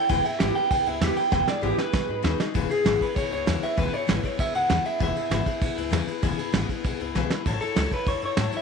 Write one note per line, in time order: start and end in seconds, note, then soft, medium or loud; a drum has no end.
0.09 0.23 E1 loud
0.09 0.25 C#3 medium
0.09 0.25 E3 medium
0.09 0.25 B3 medium
0.09 0.25 E4 medium
0.09 0.23 G#4 loud
0.09 0.24 B4 loud
0.09 0.25 G5 loud
0.09 kick loud
0.09 ride loud
0.25 0.40 B3 soft
0.25 0.40 E4 soft
0.25 0.40 G#4 medium
0.25 0.40 B4 medium
0.25 0.40 E5 loud
0.25 ride medium
0.39 0.54 G#1 loud
0.39 0.56 C#3 medium
0.39 0.56 E3 medium
0.39 0.56 B3 medium
0.39 0.56 E4 medium
0.39 0.55 G4 loud
0.39 0.54 G#4 medium
0.39 0.55 B4 medium
0.39 snare loud
0.39 ride medium
0.55 0.69 B3 soft
0.55 0.69 E4 soft
0.55 0.71 G#4 medium
0.55 0.70 B4 medium
0.55 0.70 G5 loud
0.55 ride medium
0.70 0.85 B1 loud
0.70 0.86 B3 medium
0.70 0.86 E4 medium
0.70 0.84 G#4 medium
0.70 0.85 B4 medium
0.70 0.87 G5 medium
0.70 kick loud
0.70 ride medium
0.86 1.00 C#2 medium
0.86 1.01 B3 medium
0.86 1.01 E4 medium
0.86 1.01 G#4 medium
0.86 1.01 B4 medium
0.86 1.02 E5 loud
0.86 ride medium
1.01 1.15 E2 medium
1.01 1.17 C#3 medium
1.01 1.17 E3 medium
1.01 1.17 B3 medium
1.01 1.17 E4 medium
1.01 1.18 G4 loud
1.01 1.15 G#4 medium
1.01 1.16 B4 medium
1.01 snare loud
1.01 ride medium
1.16 1.30 B3 soft
1.16 1.31 E4 soft
1.16 1.32 G#4 medium
1.16 1.31 B4 medium
1.16 1.31 G5 loud
1.16 muted upright bass stroke medium
1.16 ride medium
1.31 1.46 E1 loud
1.31 1.47 C#3 medium
1.31 1.47 E3 medium
1.31 1.47 B3 medium
1.31 1.46 E4 medium
1.31 1.45 G#4 medium
1.31 1.46 B4 loud
1.31 1.47 G5 loud
1.31 kick loud
1.31 snare medium
1.46 1.61 B3 medium
1.46 1.62 E4 medium
1.46 1.62 G#4 medium
1.46 1.62 B4 medium
1.46 1.63 D5 loud
1.46 snare medium
1.61 1.76 G#1 loud
1.61 1.78 C#3 medium
1.61 1.77 E3 medium
1.61 1.78 B3 medium
1.61 1.78 E4 medium
1.61 1.78 G4 loud
1.61 1.76 G#4 medium
1.61 1.77 B4 medium
1.77 1.91 B3 medium
1.77 1.93 E4 medium
1.77 1.93 G#4 medium
1.77 1.94 B4 medium
1.77 2.38 B4 loud
1.77 muted upright bass stroke medium
1.77 snare medium
1.92 2.07 B1 loud
1.92 2.08 B3 medium
1.92 2.08 D#4 medium
1.92 2.09 F#4 medium
1.92 2.06 G#4 medium
1.92 kick loud
1.92 snare loud
2.08 2.22 G#2 medium
2.08 2.22 D#4 medium
2.08 2.22 F#4 soft
2.08 2.23 G#4 medium
2.22 2.38 D#2 loud
2.22 2.39 B3 loud
2.22 2.38 D#4 loud
2.22 2.39 F#4 loud
2.22 2.37 G#4 medium
2.22 snare loud
2.38 2.55 D#4 medium
2.38 2.54 F#4 medium
2.38 2.54 G#4 medium
2.38 snare loud
2.54 2.69 E1 loud
2.54 2.70 C#3 medium
2.54 2.70 E3 medium
2.54 2.70 B3 medium
2.54 2.70 E4 medium
2.54 2.68 G#4 loud
2.54 2.69 B4 loud
2.54 kick loud
2.54 ride medium
2.70 2.84 B3 soft
2.70 2.84 E4 soft
2.70 2.85 G#4 medium
2.70 3.02 G#4 medium
2.70 2.85 B4 soft
2.70 ride medium
2.85 2.99 G#1 medium
2.85 3.00 C#3 medium
2.85 3.00 E3 medium
2.85 3.01 B3 medium
2.85 3.01 E4 medium
2.85 2.99 G#4 medium
2.85 3.00 B4 medium
2.85 snare loud
2.85 ride medium
3.00 3.14 B3 soft
3.00 3.14 E4 soft
3.00 3.16 G#4 medium
3.00 3.15 B4 medium
3.00 kick medium
3.00 ride medium
3.15 3.30 B1 medium
3.15 3.31 B3 medium
3.15 3.31 E4 medium
3.15 3.29 G#4 medium
3.15 3.30 B4 medium
3.15 3.30 C#5 medium
3.15 kick loud
3.15 ride medium
3.30 3.45 C#2 medium
3.30 3.46 B3 soft
3.30 3.46 E4 medium
3.30 3.46 G#4 medium
3.30 3.46 B4 soft
3.30 3.64 C#5 loud
3.30 ride medium
3.46 3.61 E2 medium
3.46 3.62 C#3 medium
3.46 3.62 E3 medium
3.46 3.62 B3 medium
3.46 3.61 E4 medium
3.46 3.60 G#4 medium
3.46 3.61 B4 medium
3.46 snare loud
3.46 ride medium
3.61 3.76 B3 soft
3.61 3.76 E4 medium
3.61 3.77 G#4 medium
3.61 3.76 B4 medium
3.61 3.79 E5 medium
3.61 muted upright bass stroke medium
3.61 ride medium
3.76 3.91 E1 loud
3.76 3.93 C#3 medium
3.76 3.92 E3 medium
3.76 3.93 B3 medium
3.76 3.92 E4 medium
3.76 3.90 G#4 medium
3.76 3.92 B4 medium
3.76 3.94 B4 medium
3.76 kick loud
3.76 ride medium
3.92 4.07 B3 soft
3.92 4.06 E4 soft
3.92 4.08 G#4 medium
3.92 4.07 B4 medium
3.92 4.09 C#5 loud
3.92 muted upright bass stroke medium
3.92 ride medium
4.07 4.22 G#1 medium
4.07 4.23 C#3 medium
4.07 4.23 E3 medium
4.07 4.23 B3 medium
4.07 4.23 E4 medium
4.07 4.22 G#4 medium
4.07 4.23 B4 medium
4.07 4.25 B4 loud
4.07 snare loud
4.07 ride medium
4.23 4.36 B3 soft
4.23 4.37 E4 medium
4.23 4.39 G#4 medium
4.23 4.39 B4 medium
4.23 4.40 C#5 loud
4.23 muted upright bass stroke medium
4.23 kick medium
4.23 ride medium
4.37 4.53 B1 medium
4.37 4.53 B3 medium
4.37 4.53 E4 medium
4.37 4.52 G#4 medium
4.37 4.53 B4 medium
4.37 4.55 E5 loud
4.37 kick loud
4.37 ride medium
4.53 4.68 C#2 medium
4.53 4.68 B3 soft
4.53 4.69 E4 soft
4.53 4.69 G#4 medium
4.53 4.69 B4 medium
4.53 4.85 F#5 loud
4.53 ride medium
4.69 4.84 E2 medium
4.69 4.85 C#3 medium
4.69 4.85 E3 medium
4.69 4.85 B3 medium
4.69 4.85 E4 medium
4.69 4.83 G#4 medium
4.69 4.84 B4 medium
4.69 snare loud
4.69 ride medium
4.84 4.99 B3 soft
4.84 5.00 E4 soft
4.84 5.00 G#4 medium
4.84 5.00 B4 medium
4.84 5.00 E5 loud
4.84 ride medium
4.99 5.14 E1 loud
4.99 5.16 C#3 medium
4.99 5.15 E3 medium
4.99 5.16 B3 medium
4.99 5.16 E4 medium
4.99 5.14 G#4 medium
4.99 5.15 B4 medium
4.99 5.90 E5 loud
4.99 kick loud
4.99 ride medium
5.16 5.30 B3 soft
5.16 5.31 E4 medium
5.16 5.31 G#4 medium
5.16 5.31 B4 medium
5.16 ride medium
5.30 5.44 G#1 medium
5.30 5.46 C#3 medium
5.30 5.46 E3 medium
5.30 5.47 B3 medium
5.30 5.46 E4 medium
5.30 5.44 G#4 medium
5.30 5.45 B4 medium
5.30 snare loud
5.30 ride medium
5.45 5.60 B3 medium
5.45 5.61 E4 medium
5.45 5.61 G#4 medium
5.45 5.61 B4 medium
5.45 muted upright bass stroke medium
5.45 kick medium
5.45 ride medium
5.61 5.75 B1 medium
5.61 5.77 B3 medium
5.61 5.77 E4 medium
5.61 5.75 G#4 medium
5.61 5.76 B4 medium
5.61 kick loud
5.61 ride medium
5.76 5.90 C#2 medium
5.76 5.90 B3 medium
5.76 5.91 E4 medium
5.76 5.91 G#4 medium
5.76 5.91 B4 medium
5.76 ride medium
5.90 6.06 E2 loud
5.90 6.07 C#3 medium
5.90 6.07 E3 medium
5.90 6.07 B3 medium
5.90 6.06 E4 medium
5.90 6.05 G#4 loud
5.90 6.05 B4 medium
5.90 snare loud
5.90 ride medium
6.06 6.22 B3 medium
6.06 6.22 E4 medium
6.06 6.22 G#4 medium
6.06 6.22 B4 medium
6.06 muted upright bass stroke medium
6.06 ride medium
6.22 6.37 E1 medium
6.22 6.38 C#3 medium
6.22 6.38 E3 medium
6.22 6.38 B3 medium
6.22 6.38 E4 medium
6.22 6.36 G#4 loud
6.22 6.37 B4 medium
6.22 kick loud
6.22 ride medium
6.37 6.52 B3 medium
6.37 6.52 E4 medium
6.37 6.53 G#4 medium
6.37 6.53 B4 medium
6.37 muted upright bass stroke medium
6.37 ride medium
6.52 6.67 G#1 medium
6.52 6.68 C#3 medium
6.52 6.68 E3 loud
6.52 6.69 B3 medium
6.52 6.69 E4 medium
6.52 6.67 G#4 medium
6.52 6.68 B4 loud
6.52 snare loud
6.52 ride medium
6.68 6.83 B3 medium
6.68 6.83 E4 medium
6.68 6.84 G#4 medium
6.68 6.84 B4 medium
6.68 kick medium
6.68 ride medium
6.84 6.98 B1 medium
6.84 6.99 B3 medium
6.84 7.00 E4 medium
6.84 6.98 G#4 medium
6.84 6.99 B4 medium
6.84 kick loud
6.84 ride medium
7.00 7.13 C#2 medium
7.00 7.15 B3 medium
7.00 7.15 E4 medium
7.00 7.15 G#4 medium
7.00 7.15 B4 medium
7.00 ride medium
7.15 7.29 B1 loud
7.15 7.31 C#3 medium
7.15 7.30 E3 loud
7.15 7.31 B3 medium
7.15 7.31 E4 medium
7.15 7.29 G#4 loud
7.15 7.31 B4 medium
7.15 snare medium
7.30 7.46 B3 medium
7.30 7.45 E4 medium
7.30 7.46 G#4 medium
7.30 7.46 B4 medium
7.30 muted upright bass stroke medium
7.30 snare medium
7.46 7.59 A1 loud
7.46 7.61 F#3 medium
7.46 7.61 A3 medium
7.46 7.61 E4 loud
7.46 7.61 A4 loud
7.46 7.59 C#5 medium
7.46 kick loud
7.46 ride medium
7.60 7.75 E4 soft
7.60 7.92 A4 medium
7.60 7.76 A4 medium
7.60 7.76 C#5 medium
7.60 muted upright bass stroke medium
7.60 ride medium
7.75 7.90 C#2 medium
7.75 7.91 F#3 medium
7.75 7.91 A3 medium
7.75 7.91 E4 medium
7.75 7.91 A4 medium
7.75 7.90 C#5 medium
7.75 snare loud
7.75 ride medium
7.91 8.06 E4 soft
7.91 8.07 A4 soft
7.91 8.08 B4 medium
7.91 8.06 C#5 medium
7.91 kick medium
7.91 ride medium
8.06 8.20 E2 medium
8.06 8.22 F#3 medium
8.06 8.22 E4 medium
8.06 8.21 A4 medium
8.06 8.22 C#5 medium
8.06 8.20 C#5 medium
8.06 kick loud
8.06 ride medium
8.22 8.36 F#2 medium
8.22 8.37 E4 soft
8.22 8.37 A4 medium
8.22 8.37 C#5 medium
8.22 ride medium
8.26 8.55 C#5 medium
8.37 8.51 A2 medium
8.37 8.53 F#3 medium
8.37 8.53 A3 medium
8.37 8.53 E4 medium
8.37 8.52 A4 medium
8.37 8.51 C#5 medium
8.37 snare loud
8.37 ride medium
8.52 8.62 E4 medium
8.52 8.62 A4 medium
8.52 8.62 C#5 medium
8.52 muted upright bass stroke medium
8.52 ride medium
8.57 8.62 E5 medium